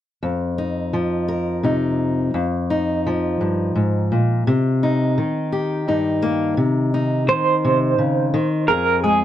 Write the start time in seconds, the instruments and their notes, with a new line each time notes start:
0.23 steel-string acoustic guitar F2
0.58 steel-string acoustic guitar D#4
0.93 steel-string acoustic guitar F3
1.28 steel-string acoustic guitar A#4
1.63 steel-string acoustic guitar C3 D#4
2.34 steel-string acoustic guitar F2
2.70 steel-string acoustic guitar D#4
3.06 steel-string acoustic guitar F3
3.41 steel-string acoustic guitar G2
3.75 steel-string acoustic guitar G#2
4.12 steel-string acoustic guitar A#2
4.47 steel-string acoustic guitar C3
4.83 steel-string acoustic guitar D#4
5.18 steel-string acoustic guitar D#3
5.52 steel-string acoustic guitar G4
5.88 steel-string acoustic guitar G2 D#4
6.22 steel-string acoustic guitar A#3
6.57 steel-string acoustic guitar C3
6.94 steel-string acoustic guitar D#4
7.28 steel-string acoustic guitar D#3, clean electric guitar C5
7.65 steel-string acoustic guitar C3
7.98 steel-string acoustic guitar C#3
8.34 steel-string acoustic guitar D#3
8.68 steel-string acoustic guitar F2 G#4, clean electric guitar A#4
9.04 steel-string acoustic guitar G#3, clean electric guitar G#4